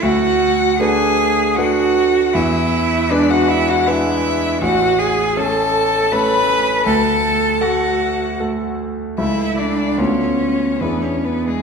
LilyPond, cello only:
\new Staff \with { instrumentName = "Cello" } { \time 3/4 \key a \major \tempo 4 = 78 fis'4 gis'4 fis'4 | e'4 d'16 fis'16 e'16 fis'16 e'4 | fis'8 gis'8 a'4 b'4 | a'4 fis'4 r4 |
e'8 d'8 cis'4 b16 cis'16 b16 gis16 | }